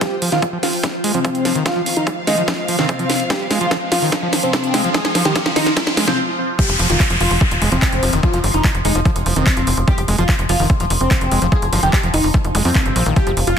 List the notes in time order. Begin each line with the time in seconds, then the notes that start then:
Already playing: F4 C5 G5
0.01 F3 G4, kick, snare, closed hi-hat, riser
0.22 F3, open hi-hat
0.32 D#3 F4, snare
0.42 F3, kick, closed hi-hat
0.53 F3
0.63 F4, snare, open hi-hat
0.73 open hi-hat
0.83 G3, kick, snare, closed hi-hat
1.04 G#3, open hi-hat
1.10 F5
1.14 F3 C4, closed hi-hat
1.25 F3, kick, closed hi-hat
1.35 closed hi-hat
1.45 F3, snare, open hi-hat
1.55 D#3, closed hi-hat
1.66 F4, kick, snare, closed hi-hat
1.76 F3
1.86 C4, open hi-hat
1.97 D#4, closed hi-hat
2.07 G3 D#4, kick, closed hi-hat
2.27 G#3 D#4, snare, open hi-hat
2.38 F3, closed hi-hat
2.48 F3, kick, snare, closed hi-hat
2.68 F3, open hi-hat
2.79 D#3 C4, snare, closed hi-hat
2.89 kick, closed hi-hat
2.99 F3, closed hi-hat
3.10 snare, open hi-hat
3.20 closed hi-hat
3.30 G3 G4, kick, snare, closed hi-hat
3.51 G#3, snare, open hi-hat
3.61 F3 F4, closed hi-hat
3.71 F3, kick, snare, closed hi-hat
3.92 F3 F4, snare, open hi-hat
4.02 D#3, open hi-hat
4.12 kick, snare, closed hi-hat
4.23 F3
4.33 snare, open hi-hat
4.43 C4, closed hi-hat
4.53 G3, kick, snare, closed hi-hat
4.64 closed hi-hat
4.74 G#3, snare, open hi-hat
4.84 F3, closed hi-hat
4.94 F3 G#4, kick, snare, closed hi-hat
5.05 snare, closed hi-hat
5.15 F3 C4, snare, open hi-hat
5.25 D#3 G4, snare, closed hi-hat
5.36 kick, snare, closed hi-hat
5.46 F3, snare
5.56 D#4, snare, open hi-hat
5.66 snare, closed hi-hat
5.77 G3, kick, snare, closed hi-hat
5.87 snare
5.97 G#3, snare, open hi-hat
6.07 F3 C4, snare, closed hi-hat
6.59 F3 G4, kick, closed hi-hat, crash, downlifter
6.69 F1, closed hi-hat
6.79 F1 F3, open hi-hat
6.90 F1 D#3 F4, closed hi-hat
7.00 F3, kick, clap, closed hi-hat
7.10 F1 F3, closed hi-hat
7.21 F1 F4, open hi-hat
7.31 F1, open hi-hat
7.41 G3, kick
7.51 D#1, closed hi-hat
7.62 F1 G#3, open hi-hat
7.72 F1 F3 C4, closed hi-hat
7.82 F3, kick, clap, closed hi-hat
7.92 F1, closed hi-hat
8.03 F1 F3, open hi-hat
8.13 F1 D#3, closed hi-hat
8.23 F3 F4, kick, closed hi-hat
8.34 F1 F3, closed hi-hat
8.44 G1 C4, open hi-hat
8.54 F1 D#4, closed hi-hat
8.64 G3, kick, clap, closed hi-hat
8.75 F1, closed hi-hat
8.85 F1 G#3 D#4, open hi-hat
8.95 F1 F3, closed hi-hat
9.05 F3, kick, closed hi-hat
9.16 F1, closed hi-hat
9.26 F1 F3, open hi-hat
9.36 F1 D#3 C4, closed hi-hat
9.47 F3, kick, clap, closed hi-hat
9.57 F1 F3, closed hi-hat
9.67 F1, open hi-hat
9.77 F1, closed hi-hat
9.88 G3 G4, kick, closed hi-hat
9.98 F1, closed hi-hat
10.08 F1 G#3, open hi-hat
10.18 F1 F3 F4, closed hi-hat
10.29 F3, kick, clap, closed hi-hat
10.39 F1, closed hi-hat
10.49 F1 F3 F4, open hi-hat
10.60 F1 D#3, open hi-hat
10.70 F3, kick
10.80 D#1 F3, closed hi-hat
10.90 F1, open hi-hat
11.01 F1 C4, closed hi-hat
11.11 G3, kick, clap, closed hi-hat
11.21 F1, closed hi-hat
11.31 F1 G#3, open hi-hat
11.42 F1 F3, closed hi-hat
11.52 F3 G#4, kick, closed hi-hat
11.62 F1, closed hi-hat
11.73 G1 F3 C4, open hi-hat
11.83 F1 D#3 G4, closed hi-hat
11.93 F3, kick, clap, closed hi-hat
12.03 F1 F3, closed hi-hat
12.14 F1 D#4, open hi-hat
12.24 F1, open hi-hat
12.34 G3, kick, closed hi-hat
12.44 F1, closed hi-hat
12.55 F1 G#3, open hi-hat, zap
12.65 F2 F3 C4, open hi-hat
12.75 F3, kick, clap, closed hi-hat
12.86 G1, closed hi-hat
12.96 A#1 F3, open hi-hat
13.06 A#1 D#3, closed hi-hat
13.16 F3 G4, kick, closed hi-hat
13.27 F1 F3, closed hi-hat
13.37 F1, open hi-hat
13.47 F1 F4, closed hi-hat